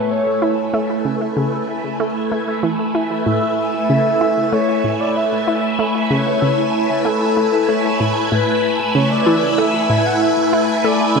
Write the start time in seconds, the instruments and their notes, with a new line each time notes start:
Already playing: string machine A3 E4 B4 E5 G#5, soft synth lead B4, synth texture G#5
0.11 soft synth lead C#5
0.42 synth arpeggio sound E4
0.74 synth arpeggio sound A3
1.05 synth arpeggio sound C#3
1.37 synth arpeggio sound C#3
2.00 synth arpeggio sound A3
2.32 synth arpeggio sound A3
2.63 synth arpeggio sound E3
2.95 synth arpeggio sound E4
3.26 synth arpeggio sound A2, soft synth lead E5
3.89 synth arpeggio sound C#3
4.21 synth arpeggio sound E4
4.53 synth arpeggio sound A3, soft synth lead C#5
4.84 synth arpeggio sound A2
5.00 soft synth lead D5
5.16 soft synth lead E5
5.47 synth arpeggio sound E4
5.79 synth arpeggio sound A3, soft synth lead C#5
6.10 synth arpeggio sound C#3
6.42 synth arpeggio sound C#3
7.05 synth arpeggio sound A3, soft synth lead A4
7.37 synth arpeggio sound A3
7.69 synth arpeggio sound A3, soft synth lead C#5
8.00 synth arpeggio sound A2
8.32 synth arpeggio sound A2, soft synth lead B4
8.80 soft synth lead B4
8.95 synth arpeggio sound C#3, soft synth lead C#5
9.11 soft synth lead D5
9.26 synth arpeggio sound E3
9.58 synth arpeggio sound A3, soft synth lead E5
9.90 synth arpeggio sound A2
10.06 soft synth lead F#5
10.22 soft synth lead E5
10.53 synth arpeggio sound E4
10.84 synth arpeggio sound A3, soft synth lead D5
11.16 synth arpeggio sound C#3